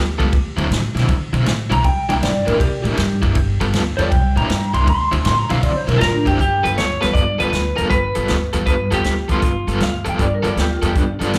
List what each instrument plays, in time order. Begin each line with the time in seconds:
Already playing: upright bass D2, clean electric guitar G4
0.18 upright bass C#2, overdriven electric guitar G3 B3 F4 A4, kick, ride
0.32 upright bass D2, kick, ride
0.56 upright bass D2, overdriven electric guitar D3 F#3 C4 E4, ride
0.71 upright bass A2, snare, ride
0.95 upright bass B2, overdriven electric guitar D3 F#3 C4 E4, snare, ride
1.09 upright bass D3, kick, ride
1.33 upright bass B2, overdriven electric guitar D3 F#3 C4 E4, ride
1.46 upright bass A2, snare, ride
1.70 upright bass B1, overdriven electric guitar D3 F#3 C4 E4, clean electric guitar A#5, ride
1.84 upright bass C2, clean electric guitar G5, kick, ride
2.09 upright bass C2, overdriven electric guitar C3 A#3 D4 E4, clean electric guitar G5, ride
2.23 upright bass G2, clean electric guitar D5, snare, ride
2.45 upright bass A2, overdriven electric guitar C3 A#3 D4 E4, clean electric guitar A#4, ride
2.59 upright bass C3, clean electric guitar G4, kick, ride
2.82 upright bass A2, overdriven electric guitar C3 A#3 D4 E4, clean electric guitar G4, ride
2.97 upright bass G2, snare, ride
3.22 upright bass F#1, overdriven electric guitar C3 A#3 D4 E4, kick, ride
3.35 upright bass G1, kick, ride
3.61 upright bass G1, overdriven electric guitar G3 B3 F4 A4, ride
3.74 upright bass D2, snare, ride
3.97 upright bass E2, overdriven electric guitar G3 B3 F4 A4, clean electric guitar D5, ride
4.10 upright bass C2, clean electric guitar G5, kick, ride
4.36 upright bass A2, overdriven electric guitar C3 A#3 D4 E4, clean electric guitar A#5, ride
4.49 upright bass G2, snare, ride
4.73 upright bass C2, overdriven electric guitar C3 A#3 D4 E4, clean electric guitar C6, ride
4.88 upright bass D2, clean electric guitar C6, kick, ride
5.12 upright bass D2, overdriven electric guitar D3 F#3 C4 E4, ride
5.25 upright bass A2, clean electric guitar C6, snare, ride
5.38 clean electric guitar A#5
5.50 upright bass B2, overdriven electric guitar D3 F#3 C4 E4, clean electric guitar F5, ride
5.63 upright bass D3, clean electric guitar D5, kick, ride
5.76 clean electric guitar C5
5.87 upright bass B2, overdriven electric guitar D3 F#3 C4 E4, clean electric guitar A#4, ride
5.98 upright bass A2, clean electric guitar F4, electric slide guitar A4 A#4, snare, ride
6.14 clean electric guitar D4
6.25 upright bass F#1, overdriven electric guitar D3 F#3 C4 E4, electric slide guitar G4, kick, ride
6.39 upright bass G1, electric slide guitar G4, kick, closed hi-hat
6.64 upright bass G1, overdriven electric guitar G3 B3 F4 A4, electric slide guitar B4, closed hi-hat
6.78 upright bass D2, electric slide guitar C#5, snare, closed hi-hat
7.01 upright bass E2, overdriven electric guitar G3 B3 F4 A4, electric slide guitar B4, snare, closed hi-hat
7.13 upright bass G2, electric slide guitar D5, kick, closed hi-hat
7.38 upright bass E2, overdriven electric guitar G3 B3 F4 A4, electric slide guitar B4, closed hi-hat
7.52 upright bass D2, snare, closed hi-hat
7.76 upright bass E2, overdriven electric guitar G3 B3 F4 A4, electric slide guitar A#4, closed hi-hat
7.90 upright bass G1, electric slide guitar B4, kick, closed hi-hat
8.15 upright bass G1, overdriven electric guitar G3 B3 F4 A4, closed hi-hat
8.28 upright bass D2, snare, closed hi-hat
8.53 upright bass E2, overdriven electric guitar G3 B3 F4 A4, closed hi-hat
8.66 upright bass G2, electric slide guitar B4, kick, closed hi-hat
8.91 upright bass E2, overdriven electric guitar G3 B3 F4 A4, electric slide guitar G4, closed hi-hat
9.04 upright bass D2, snare, closed hi-hat
9.28 upright bass E2, overdriven electric guitar G3 B3 F4 A4, electric slide guitar F4, kick, closed hi-hat
9.42 upright bass G1, kick, closed hi-hat
9.67 upright bass G1, overdriven electric guitar G3 B3 F4 A4, closed hi-hat
9.80 upright bass D2, clean electric guitar F5, snare, closed hi-hat
10.05 upright bass E2, overdriven electric guitar G3 B3 F4 A4, closed hi-hat
10.09 clean electric guitar G5
10.19 upright bass G2, clean electric guitar D5, kick, closed hi-hat
10.34 clean electric guitar A#4
10.43 upright bass E2, overdriven electric guitar G3 B3 F4 A4, clean electric guitar D5, closed hi-hat
10.56 upright bass D2, clean electric guitar G4, snare, closed hi-hat
10.71 clean electric guitar F4
10.82 upright bass E2, overdriven electric guitar G3 B3 F4 A4, clean electric guitar G4, closed hi-hat
10.95 upright bass G1, clean electric guitar D4, kick, closed hi-hat
11.19 upright bass G1, overdriven electric guitar G3 B3 F4 A4, clean electric guitar D4, closed hi-hat
11.33 upright bass D2, clean electric guitar B3, snare, closed hi-hat